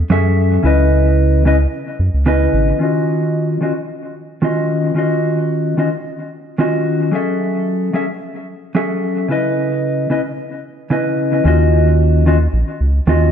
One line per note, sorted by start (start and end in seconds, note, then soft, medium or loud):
0.10 0.58 F#2 medium
0.10 0.61 F#3 medium
0.10 0.62 C#4 medium
0.10 0.62 G#4 medium
0.10 0.62 A4 medium
0.10 0.62 E5 loud
0.63 1.67 C#2 loud
0.63 1.42 C#3 medium
0.63 1.42 C#4 medium
0.63 1.43 E4 medium
0.63 1.43 B4 medium
0.67 1.44 D#5 loud
1.45 1.55 C#3 medium
1.45 1.56 C#4 medium
1.45 1.56 E4 medium
1.45 1.56 B4 medium
1.45 1.56 D#5 loud
1.99 2.10 F#2 loud
2.14 2.48 C#2 medium
2.26 2.77 C#3 medium
2.26 2.78 C#4 medium
2.26 2.78 E4 medium
2.26 2.78 B4 medium
2.26 2.78 D#5 medium
2.53 2.73 G#1 loud
2.79 3.58 D#3 medium
2.79 3.58 C#4 medium
2.79 3.59 F4 medium
2.79 3.59 F#4 medium
2.83 3.60 D#5 medium
3.61 3.71 D#3 medium
3.61 3.72 C#4 medium
3.61 3.72 F4 medium
3.61 3.72 F#4 medium
3.61 3.72 D#5 medium
4.42 4.93 D#3 medium
4.42 4.94 C#4 medium
4.42 4.94 F4 medium
4.42 4.94 F#4 medium
4.42 4.95 D#5 medium
4.94 5.74 D#3 medium
4.94 5.74 C#4 medium
4.94 5.75 F4 medium
4.94 5.75 F#4 medium
4.99 5.76 D#5 medium
5.77 5.88 D#3 medium
5.77 5.88 C#4 medium
5.77 5.88 F4 medium
5.77 5.88 F#4 medium
5.77 5.89 D#5 medium
6.58 7.10 D#3 medium
6.58 7.10 C#4 medium
6.58 7.10 F4 medium
6.58 7.11 F#4 medium
6.58 7.11 D#5 medium
7.11 7.90 F#3 medium
7.11 7.91 C#4 medium
7.11 7.91 G#4 medium
7.11 7.92 A4 medium
7.11 7.92 E5 medium
7.93 8.04 F#3 medium
7.93 8.04 C#4 medium
7.93 8.04 G#4 medium
7.93 8.05 A4 medium
7.93 8.05 E5 medium
8.75 9.26 F#3 medium
8.75 9.26 C#4 medium
8.75 9.27 G#4 medium
8.75 9.27 A4 medium
8.75 9.27 E5 medium
9.28 10.07 C#3 medium
9.28 10.07 C#4 medium
9.28 10.08 E4 medium
9.28 10.08 B4 medium
9.28 10.09 D#5 medium
10.10 10.20 C#3 medium
10.10 10.20 C#4 medium
10.10 10.20 E4 medium
10.10 10.21 B4 medium
10.10 10.21 D#5 medium
10.90 11.42 C#3 medium
10.90 11.42 C#4 medium
10.90 11.42 E4 medium
10.90 11.43 B4 medium
10.90 11.43 D#5 medium
11.44 12.48 D#2 medium
11.44 12.23 D#3 medium
11.44 12.23 C#4 medium
11.44 12.24 F4 medium
11.44 12.24 F#4 medium
11.44 12.25 D#5 loud
12.26 12.36 D#3 medium
12.26 12.36 C#4 medium
12.26 12.37 F4 medium
12.26 12.37 F#4 medium
12.26 12.37 D#5 medium
12.53 12.64 A#1 loud
12.80 13.00 C#2 loud
13.07 13.32 D#2 medium
13.07 13.32 D#3 medium
13.07 13.32 C#4 medium
13.07 13.32 F4 medium
13.07 13.32 F#4 medium
13.07 13.32 D#5 medium